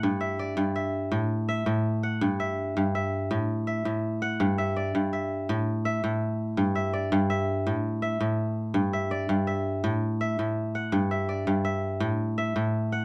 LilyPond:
<<
  \new Staff \with { instrumentName = "Kora" } { \time 12/8 \key a \dorian \tempo 4. = 110 fis''8 e''8 d''4 e''4. r8 e''4. fis''8~ | fis''8 e''4. e''4. r8 e''4. fis''8~ | fis''8 e''8 d''4 e''4. r8 e''4. r8 | r8 e''8 d''4 e''4. r8 e''4. r8 |
r8 e''8 d''4 e''4. r8 e''4. fis''8~ | fis''8 e''8 d''4 e''4. r8 e''4. fis''8 | }
  \new Staff \with { instrumentName = "Kora" } { \clef bass \time 12/8 \key a \dorian g,4 r8 g,4 r8 a,4 r8 a,4 r8 | g,4 r8 g,4 r8 a,4 r8 a,4 r8 | g,4 r8 g,4 r8 a,4 r8 a,4 r8 | g,4 r8 g,4 r8 a,4 r8 a,4 r8 |
g,4 r8 g,4 r8 a,4 r8 a,4 r8 | g,4 r8 g,4 r8 a,4 r8 a,4 r8 | }
>>